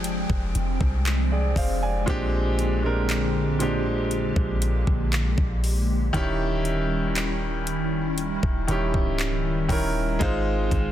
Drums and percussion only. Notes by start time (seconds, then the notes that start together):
0.04 closed hi-hat
0.30 kick
0.55 closed hi-hat
0.81 kick
1.06 clap, closed hi-hat
1.56 kick, open hi-hat
2.08 kick, closed hi-hat
2.59 closed hi-hat
3.09 clap, closed hi-hat
3.60 closed hi-hat
4.11 closed hi-hat
4.36 kick
4.62 closed hi-hat
4.87 kick
5.13 clap, closed hi-hat
5.38 kick
5.64 open hi-hat
6.14 kick, closed hi-hat
6.65 closed hi-hat
7.16 clap, closed hi-hat
7.67 closed hi-hat
8.18 closed hi-hat
8.43 kick
8.68 closed hi-hat
8.94 kick
9.19 clap, closed hi-hat
9.69 kick, open hi-hat
10.21 kick, closed hi-hat
10.71 kick, closed hi-hat